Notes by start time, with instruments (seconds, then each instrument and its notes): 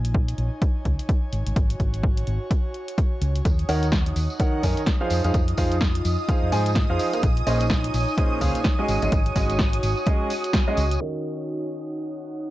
Already playing: fingered electric bass A#1, analog synth pad D#4 F4 C#5 D#5 G#5
0.05 closed hi-hat
0.14 kick
0.28 closed hi-hat
0.38 fingered electric bass A#1, closed hi-hat
0.62 kick, closed hi-hat
0.85 fingered electric bass C#2, kick, closed hi-hat
0.99 closed hi-hat
1.09 kick, closed hi-hat
1.33 fingered electric bass G#1, analog synth pad F#4, closed hi-hat
1.46 fingered electric bass G#1, closed hi-hat
1.56 kick, closed hi-hat
1.70 closed hi-hat
1.80 fingered electric bass G#1, kick, closed hi-hat
1.94 closed hi-hat
2.03 kick
2.17 closed hi-hat
2.27 fingered electric bass G#1, closed hi-hat
2.51 kick, closed hi-hat
2.74 closed hi-hat
2.88 closed hi-hat
2.98 kick, closed hi-hat
3.22 fingered electric bass C#2, closed hi-hat
3.35 closed hi-hat
3.45 fingered electric bass D#2, analog synth pad D#4 D#6, kick, cross-stick, closed hi-hat, tambourine
3.59 closed hi-hat
3.69 fingered electric bass D#2, grand piano D#3 D#4 A#4 C#5 F#5, open hi-hat, tambourine
3.83 closed hi-hat, tambourine
3.88 analog synth pad F#5, snare
3.92 kick, tambourine
4.06 closed hi-hat
4.16 fingered electric bass D#2, open hi-hat, tambourine
4.30 tambourine
4.40 grand piano D#3 D#4 A#4 C#5 F#5, kick, closed hi-hat
4.63 fingered electric bass F#2, grand piano D#3 D#4 A#4 C#5 G#5, kick, open hi-hat, tambourine
4.77 closed hi-hat, tambourine
4.86 kick, snare, closed hi-hat, tambourine
5.01 grand piano F3 D#4 G#4 C5 F5
5.10 fingered electric bass F2, analog synth pad F4, open hi-hat, tambourine
5.24 fingered electric bass F2, grand piano F3 D#4 G#4 C5 F5, closed hi-hat, tambourine
5.34 kick, cross-stick, closed hi-hat, tambourine
5.48 closed hi-hat
5.57 fingered electric bass F2, grand piano F3 D#4 G#4 C5 F5, kick, open hi-hat, tambourine
5.71 closed hi-hat, tambourine
5.81 analog synth pad D#5, kick, snare, tambourine
5.92 analog synth pad G#5, closed hi-hat
6.05 fingered electric bass F2, open hi-hat, tambourine
6.19 tambourine
6.29 grand piano F3 D#4 G#4 C5 F5, kick, closed hi-hat, tambourine
6.43 fingered electric bass F2
6.52 fingered electric bass G#2, grand piano F3 D#4 G#4 C5 G#5, open hi-hat, tambourine
6.66 closed hi-hat, tambourine
6.75 kick, snare, closed hi-hat, tambourine
6.90 fingered electric bass F2, grand piano F3 D#4 G#4 C5 F5
6.99 open hi-hat, tambourine
7.13 grand piano A#3 D#4 G#4 C5 F5, closed hi-hat, tambourine
7.23 fingered electric bass A#1, analog synth pad D#4, kick, cross-stick, closed hi-hat, tambourine
7.36 analog synth pad C#5, closed hi-hat
7.47 fingered electric bass A#1, grand piano A#2 C#4 G#4 C5 D#5, open hi-hat, tambourine
7.60 closed hi-hat, tambourine
7.70 kick, snare
7.84 closed hi-hat
7.94 fingered electric bass A#1, open hi-hat, tambourine
8.08 tambourine
8.18 grand piano A#2 C#4 G#4 C5 D#5, kick, closed hi-hat, tambourine
8.41 fingered electric bass C#2, grand piano A#2 C#4 G#4 C5 F5, kick, open hi-hat, tambourine
8.55 closed hi-hat, tambourine
8.64 kick, snare, closed hi-hat, tambourine
8.79 grand piano G#3 C#4 F#4 G#4 D#5
8.88 fingered electric bass G#1, analog synth pad F#4, open hi-hat, tambourine
9.02 fingered electric bass G#1, grand piano G#3 C#4 F#4 G#4 D#5, closed hi-hat, tambourine
9.12 fingered electric bass G#1, kick, cross-stick, closed hi-hat, tambourine
9.26 closed hi-hat
9.36 fingered electric bass G#1, grand piano G#3 C#4 F#4 G#4 D#5, kick, open hi-hat, tambourine
9.49 closed hi-hat, tambourine
9.59 kick, snare, tambourine
9.73 closed hi-hat
9.83 fingered electric bass G#1, open hi-hat, tambourine
9.97 tambourine
10.06 grand piano G#3 C#4 F#4 G#4 D#5, kick, closed hi-hat, tambourine
10.30 open hi-hat, tambourine
10.44 closed hi-hat, tambourine
10.53 kick, snare, closed hi-hat, tambourine
10.68 grand piano G#3 C#4 F#4 G#4 D#5, cross-stick
10.77 fingered electric bass C#2, open hi-hat, tambourine
10.91 closed hi-hat, tambourine
11.01 grand piano D#3 C#4 F#4 A#4 D#5, analog synth pad D#4 D#6, cross-stick, cabasa
11.72 tambourine
11.76 analog synth pad F#5
12.19 tambourine, cabasa
12.43 tambourine, cabasa